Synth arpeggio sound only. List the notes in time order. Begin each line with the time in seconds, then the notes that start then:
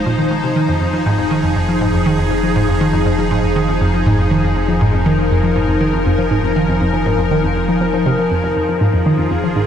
0.06 A#2
0.18 D#3
0.31 D#3
0.43 C3
0.56 D#3
0.69 F2
0.81 F2
0.93 F3
1.06 G#2
1.18 F2
1.31 D#3
1.43 F2
1.56 F2
1.69 F3
1.81 G#2
1.94 F2
2.06 D#3
2.18 F2
2.31 F2
2.43 F3
2.56 G#2
2.68 F2
2.81 D#3
2.93 F2
3.06 F2
3.19 F3
3.31 G#2
3.43 F2
3.56 D#3
3.69 F2
3.81 F2
3.94 F3
4.06 G#2
4.19 F2
4.31 D#3
4.44 F2
4.56 F2
4.68 F3
4.81 G#2
4.93 F2
5.06 D#3
5.19 F2
5.31 F2
5.43 F3
5.56 G#2
5.68 F2
5.81 D#3
5.93 F2
6.06 F2
6.18 F3
6.31 G#2
6.44 F2
6.56 D#3
6.68 F2
6.81 F2
6.94 F3
7.06 G#2
7.19 F2
7.31 D#3
7.44 F2
7.56 F2
7.69 F3
7.81 F3
7.94 F3
8.06 C3
8.19 F3
8.31 F2
8.44 F2
8.56 F2
8.69 F3
8.81 G#2
8.94 F2
9.06 D#3
9.18 F2
9.31 F2
9.44 F3
9.56 G#2